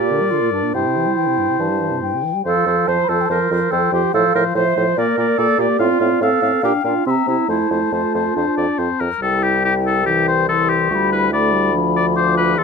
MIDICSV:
0, 0, Header, 1, 6, 480
1, 0, Start_track
1, 0, Key_signature, -1, "major"
1, 0, Tempo, 427655
1, 825, Time_signature, 4, 2, 24, 8
1, 3233, Tempo, 416667
1, 7553, Tempo, 430108
1, 10435, Key_signature, 0, "major"
1, 10913, Tempo, 419287
1, 14343, End_track
2, 0, Start_track
2, 0, Title_t, "Flute"
2, 0, Program_c, 0, 73
2, 0, Note_on_c, 0, 70, 43
2, 835, Note_on_c, 0, 79, 35
2, 851, Note_off_c, 0, 70, 0
2, 1266, Note_off_c, 0, 79, 0
2, 1300, Note_on_c, 0, 79, 34
2, 1800, Note_on_c, 0, 81, 33
2, 1817, Note_off_c, 0, 79, 0
2, 2266, Note_off_c, 0, 81, 0
2, 2273, Note_on_c, 0, 79, 27
2, 2746, Note_off_c, 0, 79, 0
2, 2755, Note_on_c, 0, 77, 38
2, 3223, Note_on_c, 0, 81, 44
2, 3240, Note_off_c, 0, 77, 0
2, 3418, Note_on_c, 0, 83, 41
2, 3430, Note_off_c, 0, 81, 0
2, 3472, Note_on_c, 0, 81, 44
2, 3483, Note_off_c, 0, 83, 0
2, 3614, Note_on_c, 0, 79, 41
2, 3625, Note_off_c, 0, 81, 0
2, 3668, Note_on_c, 0, 81, 44
2, 3679, Note_off_c, 0, 79, 0
2, 3826, Note_off_c, 0, 81, 0
2, 4189, Note_on_c, 0, 79, 41
2, 4679, Note_on_c, 0, 77, 47
2, 4696, Note_off_c, 0, 79, 0
2, 5162, Note_on_c, 0, 76, 44
2, 5179, Note_off_c, 0, 77, 0
2, 5619, Note_off_c, 0, 76, 0
2, 5626, Note_on_c, 0, 74, 45
2, 7090, Note_on_c, 0, 77, 44
2, 7107, Note_off_c, 0, 74, 0
2, 7573, Note_on_c, 0, 79, 43
2, 7589, Note_off_c, 0, 77, 0
2, 8029, Note_off_c, 0, 79, 0
2, 8036, Note_on_c, 0, 84, 40
2, 8083, Note_on_c, 0, 82, 43
2, 8094, Note_off_c, 0, 84, 0
2, 8521, Note_on_c, 0, 81, 34
2, 8537, Note_off_c, 0, 82, 0
2, 10203, Note_off_c, 0, 81, 0
2, 10446, Note_on_c, 0, 79, 37
2, 11840, Note_off_c, 0, 79, 0
2, 11880, Note_on_c, 0, 84, 37
2, 12363, Note_on_c, 0, 85, 35
2, 12380, Note_off_c, 0, 84, 0
2, 12410, Note_on_c, 0, 83, 38
2, 12422, Note_off_c, 0, 85, 0
2, 12843, Note_off_c, 0, 83, 0
2, 12855, Note_on_c, 0, 83, 38
2, 13793, Note_on_c, 0, 86, 39
2, 13810, Note_off_c, 0, 83, 0
2, 14260, Note_off_c, 0, 86, 0
2, 14267, Note_on_c, 0, 84, 39
2, 14343, Note_off_c, 0, 84, 0
2, 14343, End_track
3, 0, Start_track
3, 0, Title_t, "Oboe"
3, 0, Program_c, 1, 68
3, 0, Note_on_c, 1, 74, 42
3, 826, Note_off_c, 1, 74, 0
3, 832, Note_on_c, 1, 72, 31
3, 2487, Note_off_c, 1, 72, 0
3, 2753, Note_on_c, 1, 72, 33
3, 2989, Note_off_c, 1, 72, 0
3, 2998, Note_on_c, 1, 72, 30
3, 3229, Note_off_c, 1, 72, 0
3, 3235, Note_on_c, 1, 72, 34
3, 3471, Note_off_c, 1, 72, 0
3, 3477, Note_on_c, 1, 72, 33
3, 3708, Note_off_c, 1, 72, 0
3, 3715, Note_on_c, 1, 72, 34
3, 3950, Note_off_c, 1, 72, 0
3, 3975, Note_on_c, 1, 72, 29
3, 4196, Note_off_c, 1, 72, 0
3, 4203, Note_on_c, 1, 72, 36
3, 4435, Note_off_c, 1, 72, 0
3, 4450, Note_on_c, 1, 72, 34
3, 4676, Note_off_c, 1, 72, 0
3, 4683, Note_on_c, 1, 72, 38
3, 4906, Note_off_c, 1, 72, 0
3, 4913, Note_on_c, 1, 72, 35
3, 5149, Note_off_c, 1, 72, 0
3, 5159, Note_on_c, 1, 72, 41
3, 5390, Note_off_c, 1, 72, 0
3, 5399, Note_on_c, 1, 72, 37
3, 5631, Note_off_c, 1, 72, 0
3, 5655, Note_on_c, 1, 74, 41
3, 5879, Note_off_c, 1, 74, 0
3, 5888, Note_on_c, 1, 74, 34
3, 6115, Note_off_c, 1, 74, 0
3, 6127, Note_on_c, 1, 74, 40
3, 6354, Note_off_c, 1, 74, 0
3, 6365, Note_on_c, 1, 74, 38
3, 6582, Note_off_c, 1, 74, 0
3, 6589, Note_on_c, 1, 77, 40
3, 6824, Note_off_c, 1, 77, 0
3, 6831, Note_on_c, 1, 77, 37
3, 7065, Note_off_c, 1, 77, 0
3, 7078, Note_on_c, 1, 77, 37
3, 7305, Note_off_c, 1, 77, 0
3, 7312, Note_on_c, 1, 77, 37
3, 7548, Note_off_c, 1, 77, 0
3, 7554, Note_on_c, 1, 77, 38
3, 7785, Note_off_c, 1, 77, 0
3, 7797, Note_on_c, 1, 77, 31
3, 8026, Note_off_c, 1, 77, 0
3, 8038, Note_on_c, 1, 76, 33
3, 8266, Note_off_c, 1, 76, 0
3, 8282, Note_on_c, 1, 76, 28
3, 8510, Note_off_c, 1, 76, 0
3, 8516, Note_on_c, 1, 72, 31
3, 8749, Note_off_c, 1, 72, 0
3, 8760, Note_on_c, 1, 72, 28
3, 8994, Note_off_c, 1, 72, 0
3, 9006, Note_on_c, 1, 72, 29
3, 9237, Note_off_c, 1, 72, 0
3, 9252, Note_on_c, 1, 72, 29
3, 9472, Note_off_c, 1, 72, 0
3, 9478, Note_on_c, 1, 72, 31
3, 9713, Note_off_c, 1, 72, 0
3, 9718, Note_on_c, 1, 74, 38
3, 9962, Note_on_c, 1, 72, 38
3, 9979, Note_off_c, 1, 74, 0
3, 10196, Note_on_c, 1, 70, 38
3, 10212, Note_off_c, 1, 72, 0
3, 10435, Note_off_c, 1, 70, 0
3, 10440, Note_on_c, 1, 69, 51
3, 10681, Note_on_c, 1, 67, 49
3, 10698, Note_off_c, 1, 69, 0
3, 10912, Note_off_c, 1, 67, 0
3, 10919, Note_on_c, 1, 67, 50
3, 11026, Note_off_c, 1, 67, 0
3, 11167, Note_on_c, 1, 69, 50
3, 11387, Note_off_c, 1, 69, 0
3, 11394, Note_on_c, 1, 67, 51
3, 11632, Note_off_c, 1, 67, 0
3, 11642, Note_on_c, 1, 72, 53
3, 11873, Note_off_c, 1, 72, 0
3, 11880, Note_on_c, 1, 69, 55
3, 12118, Note_on_c, 1, 67, 43
3, 12135, Note_off_c, 1, 69, 0
3, 12600, Note_off_c, 1, 67, 0
3, 12605, Note_on_c, 1, 71, 52
3, 12839, Note_off_c, 1, 71, 0
3, 12845, Note_on_c, 1, 74, 54
3, 13311, Note_off_c, 1, 74, 0
3, 13570, Note_on_c, 1, 74, 54
3, 13674, Note_off_c, 1, 74, 0
3, 13802, Note_on_c, 1, 72, 58
3, 14032, Note_off_c, 1, 72, 0
3, 14037, Note_on_c, 1, 71, 58
3, 14276, Note_on_c, 1, 69, 57
3, 14293, Note_off_c, 1, 71, 0
3, 14343, Note_off_c, 1, 69, 0
3, 14343, End_track
4, 0, Start_track
4, 0, Title_t, "Clarinet"
4, 0, Program_c, 2, 71
4, 0, Note_on_c, 2, 67, 59
4, 346, Note_on_c, 2, 65, 55
4, 363, Note_off_c, 2, 67, 0
4, 579, Note_off_c, 2, 65, 0
4, 586, Note_on_c, 2, 62, 41
4, 821, Note_off_c, 2, 62, 0
4, 832, Note_on_c, 2, 64, 48
4, 2487, Note_off_c, 2, 64, 0
4, 2749, Note_on_c, 2, 69, 54
4, 3232, Note_on_c, 2, 72, 50
4, 3249, Note_off_c, 2, 69, 0
4, 3474, Note_on_c, 2, 69, 49
4, 3492, Note_off_c, 2, 72, 0
4, 3710, Note_off_c, 2, 69, 0
4, 3717, Note_on_c, 2, 70, 51
4, 4194, Note_on_c, 2, 69, 56
4, 4211, Note_off_c, 2, 70, 0
4, 4429, Note_off_c, 2, 69, 0
4, 4436, Note_on_c, 2, 67, 52
4, 4671, Note_off_c, 2, 67, 0
4, 4684, Note_on_c, 2, 69, 62
4, 4915, Note_off_c, 2, 69, 0
4, 4928, Note_on_c, 2, 70, 56
4, 5033, Note_off_c, 2, 70, 0
4, 5157, Note_on_c, 2, 72, 62
4, 5649, Note_on_c, 2, 70, 61
4, 5666, Note_off_c, 2, 72, 0
4, 6120, Note_on_c, 2, 69, 68
4, 6137, Note_off_c, 2, 70, 0
4, 6361, Note_on_c, 2, 67, 59
4, 6378, Note_off_c, 2, 69, 0
4, 6594, Note_off_c, 2, 67, 0
4, 6600, Note_on_c, 2, 65, 67
4, 7094, Note_on_c, 2, 69, 56
4, 7111, Note_off_c, 2, 65, 0
4, 7559, Note_off_c, 2, 69, 0
4, 7565, Note_on_c, 2, 67, 54
4, 7669, Note_off_c, 2, 67, 0
4, 7796, Note_on_c, 2, 65, 45
4, 8039, Note_on_c, 2, 60, 48
4, 8056, Note_off_c, 2, 65, 0
4, 8279, Note_on_c, 2, 64, 46
4, 8295, Note_off_c, 2, 60, 0
4, 8513, Note_off_c, 2, 64, 0
4, 8518, Note_on_c, 2, 64, 51
4, 9002, Note_on_c, 2, 65, 38
4, 9018, Note_off_c, 2, 64, 0
4, 10200, Note_off_c, 2, 65, 0
4, 10439, Note_on_c, 2, 64, 37
4, 10880, Note_off_c, 2, 64, 0
4, 10921, Note_on_c, 2, 64, 34
4, 11399, Note_on_c, 2, 67, 32
4, 11416, Note_off_c, 2, 64, 0
4, 11879, Note_off_c, 2, 67, 0
4, 11885, Note_on_c, 2, 67, 40
4, 12376, Note_on_c, 2, 65, 43
4, 12393, Note_off_c, 2, 67, 0
4, 12609, Note_on_c, 2, 64, 38
4, 12627, Note_off_c, 2, 65, 0
4, 13320, Note_on_c, 2, 62, 38
4, 13337, Note_off_c, 2, 64, 0
4, 13794, Note_on_c, 2, 65, 42
4, 13811, Note_off_c, 2, 62, 0
4, 14268, Note_off_c, 2, 65, 0
4, 14275, Note_on_c, 2, 67, 46
4, 14343, Note_off_c, 2, 67, 0
4, 14343, End_track
5, 0, Start_track
5, 0, Title_t, "French horn"
5, 0, Program_c, 3, 60
5, 5, Note_on_c, 3, 46, 35
5, 124, Note_on_c, 3, 50, 36
5, 141, Note_off_c, 3, 46, 0
5, 235, Note_on_c, 3, 55, 33
5, 252, Note_off_c, 3, 50, 0
5, 360, Note_on_c, 3, 50, 35
5, 377, Note_off_c, 3, 55, 0
5, 473, Note_on_c, 3, 46, 34
5, 490, Note_off_c, 3, 50, 0
5, 591, Note_on_c, 3, 43, 32
5, 608, Note_off_c, 3, 46, 0
5, 712, Note_on_c, 3, 46, 28
5, 729, Note_off_c, 3, 43, 0
5, 826, Note_off_c, 3, 46, 0
5, 832, Note_on_c, 3, 43, 29
5, 963, Note_on_c, 3, 48, 27
5, 980, Note_off_c, 3, 43, 0
5, 1082, Note_on_c, 3, 52, 27
5, 1099, Note_off_c, 3, 48, 0
5, 1199, Note_on_c, 3, 55, 25
5, 1216, Note_off_c, 3, 52, 0
5, 1326, Note_on_c, 3, 52, 28
5, 1343, Note_off_c, 3, 55, 0
5, 1429, Note_on_c, 3, 48, 26
5, 1446, Note_off_c, 3, 52, 0
5, 1557, Note_on_c, 3, 43, 27
5, 1574, Note_off_c, 3, 48, 0
5, 1674, Note_on_c, 3, 48, 26
5, 1691, Note_off_c, 3, 43, 0
5, 1782, Note_off_c, 3, 48, 0
5, 1789, Note_on_c, 3, 52, 27
5, 1914, Note_on_c, 3, 55, 25
5, 1931, Note_off_c, 3, 52, 0
5, 2036, Note_on_c, 3, 52, 24
5, 2053, Note_off_c, 3, 55, 0
5, 2144, Note_on_c, 3, 48, 24
5, 2161, Note_off_c, 3, 52, 0
5, 2269, Note_on_c, 3, 43, 26
5, 2286, Note_off_c, 3, 48, 0
5, 2405, Note_on_c, 3, 48, 27
5, 2422, Note_off_c, 3, 43, 0
5, 2517, Note_on_c, 3, 52, 27
5, 2534, Note_off_c, 3, 48, 0
5, 2633, Note_on_c, 3, 55, 24
5, 2649, Note_off_c, 3, 52, 0
5, 2747, Note_off_c, 3, 55, 0
5, 2754, Note_on_c, 3, 53, 33
5, 2989, Note_off_c, 3, 53, 0
5, 3004, Note_on_c, 3, 53, 30
5, 3232, Note_off_c, 3, 53, 0
5, 3237, Note_on_c, 3, 53, 30
5, 3465, Note_off_c, 3, 53, 0
5, 3472, Note_on_c, 3, 53, 29
5, 3709, Note_off_c, 3, 53, 0
5, 3717, Note_on_c, 3, 53, 33
5, 3946, Note_off_c, 3, 53, 0
5, 3952, Note_on_c, 3, 53, 31
5, 4185, Note_off_c, 3, 53, 0
5, 4192, Note_on_c, 3, 53, 33
5, 4425, Note_off_c, 3, 53, 0
5, 4432, Note_on_c, 3, 53, 34
5, 4669, Note_off_c, 3, 53, 0
5, 4677, Note_on_c, 3, 53, 39
5, 4912, Note_off_c, 3, 53, 0
5, 4930, Note_on_c, 3, 53, 37
5, 5157, Note_off_c, 3, 53, 0
5, 5162, Note_on_c, 3, 53, 38
5, 5392, Note_off_c, 3, 53, 0
5, 5404, Note_on_c, 3, 53, 38
5, 5633, Note_off_c, 3, 53, 0
5, 5644, Note_on_c, 3, 58, 38
5, 5870, Note_off_c, 3, 58, 0
5, 5877, Note_on_c, 3, 58, 38
5, 6110, Note_off_c, 3, 58, 0
5, 6119, Note_on_c, 3, 58, 40
5, 6349, Note_off_c, 3, 58, 0
5, 6354, Note_on_c, 3, 58, 38
5, 6587, Note_off_c, 3, 58, 0
5, 6591, Note_on_c, 3, 60, 43
5, 6825, Note_off_c, 3, 60, 0
5, 6842, Note_on_c, 3, 60, 38
5, 7070, Note_off_c, 3, 60, 0
5, 7084, Note_on_c, 3, 60, 35
5, 7312, Note_off_c, 3, 60, 0
5, 7326, Note_on_c, 3, 60, 35
5, 7550, Note_off_c, 3, 60, 0
5, 7557, Note_on_c, 3, 62, 38
5, 7787, Note_off_c, 3, 62, 0
5, 7794, Note_on_c, 3, 62, 30
5, 8024, Note_off_c, 3, 62, 0
5, 8036, Note_on_c, 3, 60, 33
5, 8255, Note_off_c, 3, 60, 0
5, 8261, Note_on_c, 3, 60, 30
5, 8496, Note_off_c, 3, 60, 0
5, 8503, Note_on_c, 3, 57, 32
5, 8743, Note_off_c, 3, 57, 0
5, 8754, Note_on_c, 3, 57, 27
5, 8987, Note_off_c, 3, 57, 0
5, 8994, Note_on_c, 3, 57, 35
5, 9472, Note_on_c, 3, 62, 42
5, 9489, Note_off_c, 3, 57, 0
5, 9962, Note_on_c, 3, 60, 32
5, 9978, Note_off_c, 3, 62, 0
5, 10289, Note_off_c, 3, 60, 0
5, 10426, Note_on_c, 3, 55, 37
5, 11345, Note_off_c, 3, 55, 0
5, 11397, Note_on_c, 3, 52, 38
5, 11871, Note_off_c, 3, 52, 0
5, 11879, Note_on_c, 3, 52, 37
5, 12351, Note_off_c, 3, 52, 0
5, 12368, Note_on_c, 3, 55, 36
5, 12836, Note_on_c, 3, 57, 37
5, 12853, Note_off_c, 3, 55, 0
5, 13080, Note_on_c, 3, 55, 40
5, 13097, Note_off_c, 3, 57, 0
5, 13303, Note_off_c, 3, 55, 0
5, 13310, Note_on_c, 3, 53, 41
5, 14267, Note_on_c, 3, 52, 41
5, 14284, Note_off_c, 3, 53, 0
5, 14343, Note_off_c, 3, 52, 0
5, 14343, End_track
6, 0, Start_track
6, 0, Title_t, "Bassoon"
6, 0, Program_c, 4, 70
6, 0, Note_on_c, 4, 46, 47
6, 269, Note_off_c, 4, 46, 0
6, 827, Note_on_c, 4, 48, 36
6, 1229, Note_off_c, 4, 48, 0
6, 1788, Note_on_c, 4, 43, 32
6, 2194, Note_off_c, 4, 43, 0
6, 2755, Note_on_c, 4, 41, 36
6, 2863, Note_off_c, 4, 41, 0
6, 2987, Note_on_c, 4, 41, 31
6, 3096, Note_off_c, 4, 41, 0
6, 3230, Note_on_c, 4, 41, 33
6, 3340, Note_off_c, 4, 41, 0
6, 3474, Note_on_c, 4, 41, 34
6, 3582, Note_off_c, 4, 41, 0
6, 3710, Note_on_c, 4, 41, 39
6, 3819, Note_off_c, 4, 41, 0
6, 3959, Note_on_c, 4, 41, 35
6, 4066, Note_off_c, 4, 41, 0
6, 4205, Note_on_c, 4, 41, 39
6, 4311, Note_off_c, 4, 41, 0
6, 4435, Note_on_c, 4, 41, 36
6, 4543, Note_off_c, 4, 41, 0
6, 4682, Note_on_c, 4, 45, 43
6, 4788, Note_off_c, 4, 45, 0
6, 4924, Note_on_c, 4, 45, 34
6, 5030, Note_off_c, 4, 45, 0
6, 5158, Note_on_c, 4, 45, 43
6, 5265, Note_off_c, 4, 45, 0
6, 5414, Note_on_c, 4, 45, 39
6, 5516, Note_off_c, 4, 45, 0
6, 5645, Note_on_c, 4, 46, 44
6, 5750, Note_off_c, 4, 46, 0
6, 5879, Note_on_c, 4, 46, 43
6, 5985, Note_off_c, 4, 46, 0
6, 6117, Note_on_c, 4, 46, 45
6, 6224, Note_off_c, 4, 46, 0
6, 6347, Note_on_c, 4, 46, 42
6, 6456, Note_off_c, 4, 46, 0
6, 6588, Note_on_c, 4, 45, 47
6, 6696, Note_off_c, 4, 45, 0
6, 6829, Note_on_c, 4, 45, 40
6, 6937, Note_off_c, 4, 45, 0
6, 7068, Note_on_c, 4, 45, 41
6, 7176, Note_off_c, 4, 45, 0
6, 7310, Note_on_c, 4, 45, 37
6, 7419, Note_off_c, 4, 45, 0
6, 7557, Note_on_c, 4, 46, 41
6, 7663, Note_off_c, 4, 46, 0
6, 7791, Note_on_c, 4, 46, 36
6, 7897, Note_off_c, 4, 46, 0
6, 8041, Note_on_c, 4, 48, 38
6, 8145, Note_off_c, 4, 48, 0
6, 8272, Note_on_c, 4, 48, 32
6, 8379, Note_off_c, 4, 48, 0
6, 8507, Note_on_c, 4, 41, 34
6, 8616, Note_off_c, 4, 41, 0
6, 8752, Note_on_c, 4, 41, 30
6, 8861, Note_off_c, 4, 41, 0
6, 8997, Note_on_c, 4, 41, 29
6, 9105, Note_off_c, 4, 41, 0
6, 9244, Note_on_c, 4, 41, 29
6, 9351, Note_off_c, 4, 41, 0
6, 9486, Note_on_c, 4, 41, 31
6, 9592, Note_off_c, 4, 41, 0
6, 9727, Note_on_c, 4, 41, 30
6, 9832, Note_off_c, 4, 41, 0
6, 9958, Note_on_c, 4, 41, 29
6, 10065, Note_off_c, 4, 41, 0
6, 10205, Note_on_c, 4, 41, 27
6, 10311, Note_off_c, 4, 41, 0
6, 10439, Note_on_c, 4, 36, 39
6, 12317, Note_off_c, 4, 36, 0
6, 12363, Note_on_c, 4, 38, 43
6, 14269, Note_on_c, 4, 40, 48
6, 14286, Note_off_c, 4, 38, 0
6, 14343, Note_off_c, 4, 40, 0
6, 14343, End_track
0, 0, End_of_file